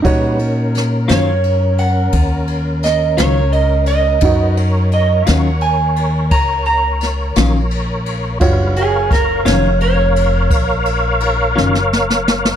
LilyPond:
<<
  \new Staff \with { instrumentName = "Electric slide guitar" } { \time 12/8 \key ees \minor \tempo 4. = 57 r4. des''4 ges''4. ees''8 des''8 ees''8 ees''8~ | ees''8 r8 ees''8 ges''8 aes''4 bes''8 bes''2 r8 | r8 aes'8 bes'8 des''8 des''2. r4 | }
  \new Staff \with { instrumentName = "Tonewheel organ" } { \time 12/8 \key ees \minor <g des' ges' ces''>8 <des' bes'>1~ <des' bes'>4. | <ges' bes' ces'' des''>8 <bes' des''>1~ <bes' des''>4. | <g d' ces'' f''>8 <bes' des'' f''>1~ <bes' des'' f''>4. | }
  \new Staff \with { instrumentName = "Upright piano" } { \time 12/8 \key ees \minor <ees' ges' des''>1. | <ees' ges' ees''>1. | <f' ges' des''>1. | }
  \new Staff \with { instrumentName = "Clean electric guitar" } { \time 12/8 \key ees \minor r4. <ees ges des' f'>8 r2 r8 <ees ges des' f'>8 r4 | r4. <ees ges des' f'>8 r2 r8 <ees ges des' f'>8 r4 | r4. <ees ges des' f'>8 r2 r8 <ees ges des' f'>8 r4 | }
  \new Staff \with { instrumentName = "Upright bass" } { \clef bass \time 12/8 \key ees \minor bes,4. ges,4. ees,4. des,4. | ges,4. ees,4. des,4. bes,,4. | ges,,4. f,,4. bes,,4. ges,,4. | }
  \new DrumStaff \with { instrumentName = "Drums" } \drummode { \time 12/8 <bd cymr>8 cymr8 <cymr sn>8 <cymr sn>8 cymr8 cymr8 <bd cymr>8 cymr8 <cymr sn>8 <cymr sn>8 cymr8 cymr8 | <bd cymr>8 cymr8 cymr8 <cymr sn>8 cymr8 cymr8 <bd cymr>8 cymr8 <cymr sn>8 <cymr sn>8 cymr8 cymr8 | <bd cymr>8 cymr8 <bd cymr sn>8 <cymr sn>8 cymr8 cymr8 <bd cymr>8 cymr8 cymr8 sn16 sn16 sn16 sn16 sn16 sn16 | }
>>